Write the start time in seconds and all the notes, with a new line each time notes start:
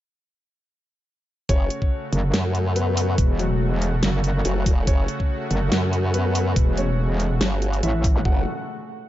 1.49 F#1 C#3 A3 C#4 F#4 C#5, kick, closed hi-hat
1.70 closed hi-hat
1.82 kick
2.13 F#1, closed hi-hat
2.34 F#2, snare, closed hi-hat
2.55 closed hi-hat
2.76 B3 B4, closed hi-hat
2.97 open hi-hat
3.18 E1, kick, closed hi-hat
3.39 F#3 F#4, closed hi-hat
3.82 closed hi-hat
4.03 F#1, snare, closed hi-hat
4.24 closed hi-hat
4.45 F#1 F#3 F#4, closed hi-hat
4.66 E1, kick, open hi-hat
4.87 F#1 C#4 C#5, kick, closed hi-hat
5.08 closed hi-hat
5.20 kick
5.51 F#1, closed hi-hat
5.72 F#2, snare, closed hi-hat
5.93 closed hi-hat
6.14 B3 B4, closed hi-hat
6.35 open hi-hat
6.56 E1, kick, closed hi-hat
6.77 C#4 C#5, closed hi-hat
7.20 closed hi-hat
7.41 G1, snare, closed hi-hat
7.62 closed hi-hat
7.73 closed hi-hat
7.83 A1 E4 E5, closed hi-hat
8.04 kick, open hi-hat
8.16 zap
8.25 F#1 C#3 A3 F#4 F#5, kick